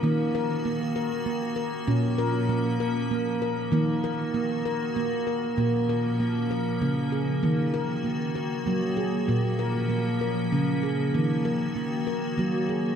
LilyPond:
<<
  \new Staff \with { instrumentName = "Ambient pad" } { \time 3/4 \key bes \minor \tempo 4 = 97 << { <ees ges'>2. | <f des'>2. | <ees ges'>2. | <f des'>2. |
<ees ges'>2. | <f des'>2. | <ees ges'>2. | } \\ { bes2.~ | bes2. | bes2. | bes2.~ |
bes2.~ | bes2.~ | bes2. | } >> }
  \new Staff \with { instrumentName = "Handpan" } { \time 3/4 \key bes \minor bes8 bes'8 bes8 bes'8 bes8 bes'8 | des'8 bes'8 bes8 bes'8 bes8 bes'8 | bes8 bes'8 bes8 bes'8 bes8 bes'8 | bes8 bes'8 bes8 bes'8 bes8 aes'8 |
bes8 bes'8 bes8 bes'8 bes8 aes'8 | bes8 bes'8 bes8 bes'8 bes8 aes'8 | bes8 bes'8 bes8 bes'8 bes8 aes'8 | }
  \new Staff \with { instrumentName = "Handpan" } { \clef bass \time 3/4 \key bes \minor ees2 r4 | bes,2 r4 | ees2 r4 | bes,2 des4 |
ees2 ges4 | bes,2 des4 | ees2 ges4 | }
>>